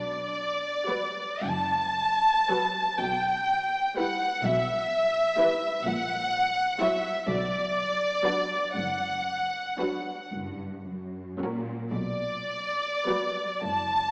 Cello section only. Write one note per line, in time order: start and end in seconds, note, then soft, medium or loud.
0.00 1.18 B2 soft
1.48 2.75 F#2 soft
3.01 4.19 B2 soft
4.44 5.60 B2 medium
5.85 7.02 A#2 medium
7.29 8.49 B2 medium
8.76 10.05 F#2 soft
10.34 10.84 G2 soft
10.87 11.41 F#2 soft
11.42 11.94 A#2 soft
11.93 13.35 B2 soft
13.64 14.11 F#2 soft